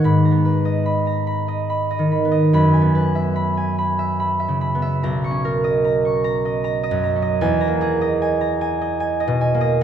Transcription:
0.00 0.30 B3 soft
0.00 1.78 F#4 medium
0.00 3.52 F#5 medium
0.00 0.24 A#5 soft
0.04 2.56 G#2 medium
0.04 0.84 B5 medium
0.25 1.05 A#5 soft
0.31 2.24 B3 medium
0.45 2.94 B4 medium
0.65 1.47 D#5 medium
0.86 1.26 B5 medium
1.07 2.56 A#5 medium
1.27 1.68 B5 medium
1.48 1.89 D#5 medium
1.70 2.10 B5 medium
1.91 2.30 D#5 medium
1.99 2.57 D#3 medium
2.12 2.52 B5 medium
2.25 2.80 B3 soft
2.31 2.56 D#5 medium
2.53 5.06 F#2 medium
2.53 3.34 B5 medium
2.73 3.56 G#5 medium
2.82 4.73 B3 medium
2.95 6.85 B4 medium
3.15 3.98 E5 medium
3.36 3.77 B5 medium
3.57 5.05 G#5 medium
3.78 4.18 B5 medium
3.99 4.38 E5 medium
4.20 4.60 B5 medium
4.40 4.81 E5 medium
4.48 5.06 C#3 medium
4.61 8.51 B5 medium
4.75 8.65 B3 medium
4.82 5.06 E5 medium
5.03 7.45 B1 medium
5.03 5.83 A#5 medium
5.24 6.04 C#6 medium
5.31 7.15 C#4 medium
5.45 9.35 A#4 medium
5.64 6.44 D#5 medium
5.84 6.23 A#5 medium
6.05 7.45 C#6 medium
6.24 6.63 A#5 medium
6.45 6.82 D#5 medium
6.64 7.02 A#5 medium
6.83 7.21 D#5 medium
6.91 7.46 F#2 medium
7.03 7.60 A#5 medium
7.16 7.45 C#4 medium
7.22 8.00 D#5 medium
7.41 9.83 E2 medium
7.41 8.21 G#5 medium
7.61 8.40 A#5 medium
7.68 9.53 A#3 medium
7.81 9.83 G#4 medium
8.01 8.80 D#5 medium
8.22 8.60 G#5 medium
8.41 9.83 A#5 medium
8.61 8.99 G#5 medium
8.81 9.19 D#5 medium
9.00 9.40 G#5 medium
9.20 9.60 D#5 medium
9.28 9.83 B2 medium
9.41 9.83 G#5 medium
9.54 9.83 A#3 medium
9.61 9.83 D#5 medium

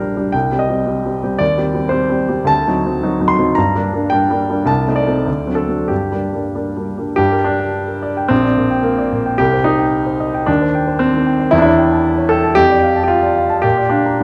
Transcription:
0.00 0.37 A#1 soft
0.00 0.16 G3 soft
0.00 0.17 D4 soft
0.00 0.17 G4 soft
0.00 0.34 A#4 medium
0.00 0.36 C5 medium
0.16 0.33 G3 soft
0.16 0.33 D4 soft
0.16 0.33 G4 soft
0.32 0.52 C2 soft
0.32 0.60 G5 medium
0.52 0.68 G3 soft
0.52 0.68 C4 soft
0.52 0.68 G4 soft
0.59 1.39 D#5 medium
0.69 0.84 G3 soft
0.69 0.85 C4 soft
0.69 0.86 G4 soft
0.86 1.03 G3 soft
0.86 1.03 C4 soft
0.86 1.03 G4 soft
1.05 1.21 G3 soft
1.05 1.21 C4 soft
1.05 1.21 G4 soft
1.23 1.39 G3 soft
1.23 1.39 C4 soft
1.23 1.39 G4 soft
1.39 1.57 D#2 soft
1.39 1.91 D5 medium
1.57 1.73 G3 soft
1.57 1.73 C4 soft
1.57 1.73 G4 soft
1.74 1.90 G3 soft
1.74 1.90 C4 soft
1.74 1.90 G4 soft
1.89 2.08 G3 soft
1.89 2.08 C4 soft
1.89 2.09 G4 soft
1.89 2.48 C5 medium
2.10 2.27 G3 soft
2.10 2.28 C4 soft
2.10 2.28 G4 soft
2.29 2.47 G3 soft
2.29 2.47 C4 soft
2.29 2.47 G4 soft
2.45 2.65 D2 medium
2.45 3.29 A5 medium
2.67 2.84 F#3 soft
2.67 2.84 C4 soft
2.67 2.84 D#4 soft
2.85 3.01 F#3 soft
2.85 3.02 C4 soft
2.85 3.02 D#4 soft
3.03 3.19 F#3 soft
3.03 3.19 C4 soft
3.03 3.19 D#4 soft
3.20 3.37 F#3 soft
3.20 3.37 C4 soft
3.20 3.37 D#4 soft
3.28 3.56 C6 medium
3.39 3.55 F#3 soft
3.39 3.55 C4 soft
3.39 3.56 D#4 soft
3.55 3.75 G2 medium
3.55 4.11 A#5 medium
3.75 3.91 G3 soft
3.75 3.92 A#3 soft
3.75 3.92 D4 soft
3.93 4.10 G3 soft
3.93 4.10 A#3 soft
3.93 4.11 D4 soft
4.10 4.29 G3 soft
4.10 4.29 A#3 soft
4.10 4.29 D4 soft
4.10 4.68 G5 medium
4.30 4.48 G3 soft
4.30 4.48 A#3 soft
4.30 4.48 D4 soft
4.50 4.67 G3 soft
4.50 4.67 A#3 soft
4.50 4.67 D4 soft
4.66 4.86 C2 medium
4.66 4.97 A5 medium
4.87 5.05 A3 soft
4.87 5.05 C4 soft
4.87 5.06 D#4 soft
4.96 5.57 D5 medium
5.07 5.25 A3 soft
5.07 5.25 C4 soft
5.07 5.25 D#4 soft
5.26 5.46 D2 soft
5.47 5.66 F#3 soft
5.47 5.66 C4 soft
5.47 5.66 D4 soft
5.55 5.89 A4 medium
5.68 5.88 F#3 soft
5.68 5.88 C4 soft
5.68 5.88 D4 soft
5.88 6.11 G2 soft
5.88 6.87 G4 medium
6.12 6.32 G3 soft
6.12 6.32 A#3 soft
6.12 6.32 D4 soft
6.33 6.53 G3 soft
6.33 6.53 A#3 soft
6.33 6.53 D4 soft
6.55 6.75 G3 soft
6.55 6.75 A#3 soft
6.55 6.75 D4 soft
6.77 6.96 G3 soft
6.77 6.96 A#3 soft
6.77 6.96 D4 soft
6.98 7.16 G3 soft
6.98 7.16 A#3 soft
6.98 7.16 D4 soft
7.16 8.27 G2 medium
7.16 7.46 G4 medium
7.32 7.55 A#4 soft
7.44 8.30 D4 medium
7.44 7.69 D5 soft
7.60 8.05 G5 soft
7.88 8.11 A#4 soft
8.03 8.25 D5 soft
8.17 8.31 G5 soft
8.28 9.36 A#1 medium
8.28 8.84 C4 medium
8.44 8.66 D5 soft
8.57 8.79 A#2 soft
8.71 9.15 G5 soft
8.83 9.38 A#3 medium
8.98 9.20 D5 soft
9.12 9.34 A#2 soft
9.26 9.39 G5 soft
9.38 10.45 C2 medium
9.38 9.65 G4 medium
9.53 9.74 C5 soft
9.64 10.47 D#4 medium
9.64 9.87 D#5 soft
9.79 10.23 G5 soft
10.06 10.29 C5 soft
10.20 10.42 D#5 soft
10.34 10.48 G5 soft
10.46 11.50 D#2 medium
10.46 11.00 D4 medium
10.62 10.83 C5 soft
10.75 10.96 G5 soft
10.87 11.29 C5 soft
10.99 11.52 C4 medium
11.14 11.35 D#3 soft
11.26 11.47 G5 soft
11.40 11.53 C5 soft
11.51 12.54 E2 medium
11.51 11.58 E4 medium
11.58 11.64 D4 medium
11.58 12.30 E4 medium
11.65 11.86 C#5 soft
11.78 11.99 G5 soft
11.91 12.34 A5 soft
12.18 12.39 C#5 soft
12.29 12.57 A4 medium
12.29 12.52 G5 soft
12.44 12.57 A5 soft
12.55 13.61 F2 medium
12.55 13.02 G4 loud
12.70 12.92 D5 soft
12.82 13.05 F5 soft
12.96 13.39 A5 soft
13.04 13.10 G4 medium
13.08 13.63 F4 medium
13.23 13.45 D5 soft
13.36 13.58 F5 soft
13.50 13.64 A5 medium
13.62 14.19 A#2 medium
13.62 13.91 G4 medium
13.77 14.00 D5 soft
13.89 14.23 D4 medium
13.89 14.14 F5 soft
14.06 14.21 A#5 soft

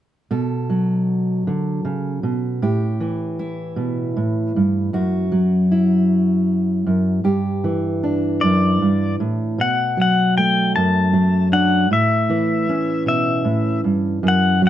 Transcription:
0.31 1.46 B2 soft
0.31 2.58 A4 soft
0.70 2.58 F#3 soft
1.47 1.84 D3 soft
1.85 2.23 C#3 soft
2.23 2.62 B2 soft
2.62 4.15 A2 soft
2.62 4.89 G4 soft
3.00 5.31 E3 soft
3.39 4.96 E4 soft
3.76 4.16 B2 soft
4.17 4.55 A2 soft
4.56 4.93 G2 soft
4.93 6.85 F#2 medium
4.93 7.24 F#4 soft
5.32 7.20 F#3 soft
5.72 7.21 E4 soft
6.86 7.23 F#2 soft
7.24 8.40 G2 soft
7.24 9.53 G4 soft
7.64 9.58 E3 soft
8.03 9.53 D4 soft
8.41 8.81 F#2 medium
8.41 9.15 D5 medium
8.82 9.19 G2 soft
9.20 9.58 A2 medium
9.58 10.74 B2 medium
9.58 9.99 F#5 medium
9.97 11.12 F#3 soft
10.02 10.37 F#5 medium
10.38 12.69 A3 soft
10.38 10.72 G5 medium
10.76 11.90 F#2 soft
10.76 11.48 A5 medium
11.13 11.86 F#3 soft
11.52 11.86 D4 soft
11.52 11.88 F#5 medium
11.91 13.43 A2 medium
11.91 13.03 E5 medium
12.30 14.61 E3 soft
12.69 14.18 C#4 soft
13.06 13.44 B2 medium
13.06 13.80 E5 medium
13.45 13.83 A2 soft
13.84 14.22 G2 soft
14.23 14.69 F#2 medium
14.28 14.61 F#5 medium
14.62 14.69 F#3 soft

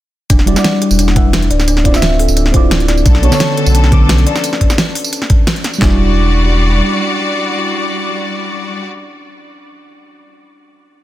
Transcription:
0.30 0.55 E1 loud
0.30 0.46 D4 loud
0.30 kick loud
0.30 closed hi-hat loud
0.30 tambourine soft
0.39 snare soft
0.46 0.53 G3 medium
0.46 0.54 E4 medium
0.46 0.63 F#4 medium
0.46 0.55 F#4 medium
0.46 0.55 D5 loud
0.46 closed hi-hat medium
0.54 1.13 G3 loud
0.54 1.14 E4 medium
0.54 1.15 F#5 medium
0.54 snare medium
0.54 tambourine medium
0.58 1.15 D5 loud
0.64 0.74 D4 medium
0.64 snare loud
0.64 closed hi-hat loud
0.64 tambourine medium
0.82 0.97 G4 medium
0.82 closed hi-hat medium
0.91 1.49 E1 medium
0.91 tambourine medium
0.99 1.14 D4 medium
0.99 closed hi-hat loud
0.99 tambourine soft
1.08 snare soft
1.15 1.49 G3 medium
1.15 1.49 E4 medium
1.15 1.32 B4 medium
1.15 1.50 E5 medium
1.15 1.50 F#5 medium
1.15 kick loud
1.15 closed hi-hat medium
1.33 1.49 D4 loud
1.33 snare loud
1.33 closed hi-hat medium
1.33 tambourine soft
1.42 closed hi-hat soft
1.51 2.27 D1 loud
1.51 1.67 D5 medium
1.51 closed hi-hat medium
1.60 snare soft
1.60 tambourine soft
1.68 1.84 D4 loud
1.68 closed hi-hat medium
1.68 tambourine soft
1.77 snare soft
1.84 1.90 C4 medium
1.84 1.92 E4 medium
1.84 2.01 F4 medium
1.84 1.92 F4 medium
1.84 1.92 D5 medium
1.84 kick medium
1.84 closed hi-hat medium
1.92 2.50 C4 loud
1.92 2.52 F4 medium
1.92 snare medium
1.92 tambourine medium
1.96 2.53 E5 loud
2.02 2.12 D4 medium
2.02 snare loud
2.02 closed hi-hat medium
2.02 tambourine soft
2.19 2.35 A4 medium
2.19 open hi-hat medium
2.28 2.53 D1 medium
2.28 tambourine medium
2.37 2.52 D4 medium
2.37 closed hi-hat medium
2.37 tambourine soft
2.46 snare soft
2.52 2.62 D1 medium
2.52 3.04 C4 loud
2.52 3.04 E4 medium
2.52 3.05 F4 medium
2.52 2.70 C5 medium
2.52 kick loud
2.52 closed hi-hat medium
2.56 3.06 D5 loud
2.63 3.04 D1 medium
2.71 2.87 D4 loud
2.71 snare loud
2.71 closed hi-hat medium
2.71 tambourine soft
2.80 closed hi-hat soft
2.88 3.05 D5 medium
2.88 snare soft
2.88 closed hi-hat medium
2.98 tambourine soft
3.06 3.31 B1 loud
3.06 4.25 D3 medium
3.06 3.22 C#4 loud
3.06 4.25 A4 medium
3.06 kick loud
3.06 closed hi-hat medium
3.06 tambourine soft
3.15 snare soft
3.22 3.28 B3 medium
3.22 3.30 D4 medium
3.22 3.38 F#4 medium
3.22 3.31 A4 medium
3.22 3.31 C#5 loud
3.22 closed hi-hat medium
3.30 3.90 D3 medium
3.30 3.89 B3 loud
3.30 3.90 A4 medium
3.30 snare soft
3.30 tambourine medium
3.34 3.91 C#5 loud
3.40 3.50 C#4 medium
3.40 snare loud
3.40 closed hi-hat medium
3.40 tambourine soft
3.57 3.73 A4 medium
3.57 closed hi-hat medium
3.66 4.25 B1 loud
3.66 tambourine medium
3.75 3.90 C#4 medium
3.75 closed hi-hat medium
3.75 tambourine soft
3.84 snare soft
3.91 4.25 D3 medium
3.91 4.25 B3 medium
3.91 4.26 A4 medium
3.91 4.08 B4 medium
3.91 4.26 D6 loud
3.91 kick loud
3.91 closed hi-hat medium
4.09 4.25 C#4 loud
4.09 snare loud
4.09 closed hi-hat medium
4.09 tambourine soft
4.18 closed hi-hat soft
4.26 4.44 F3 medium
4.26 4.44 A#3 medium
4.26 4.44 A4 medium
4.26 4.43 D5 medium
4.26 closed hi-hat medium
4.36 snare soft
4.36 tambourine soft
4.44 closed hi-hat medium
4.44 tambourine soft
4.53 snare soft
4.61 kick medium
4.61 closed hi-hat medium
4.70 snare soft
4.70 tambourine medium
4.78 snare loud
4.78 closed hi-hat medium
4.78 tambourine soft
4.95 open hi-hat medium
5.04 tambourine medium
5.13 closed hi-hat medium
5.13 tambourine soft
5.22 snare soft
5.30 kick loud
5.30 closed hi-hat medium
5.47 snare loud
5.47 closed hi-hat medium
5.47 tambourine soft
5.56 closed hi-hat soft
5.64 snare soft
5.64 closed hi-hat medium
5.73 tambourine soft
5.78 6.81 E1 loud
5.78 8.82 G3 medium
5.78 8.85 G3 medium
5.78 5.98 D4 loud
5.78 8.84 E4 medium
5.78 8.85 F#4 medium
5.78 8.85 D5 medium
5.78 kick loud
5.78 snare loud
5.78 clap medium
5.83 8.86 F#4 medium
5.83 8.89 D5 medium

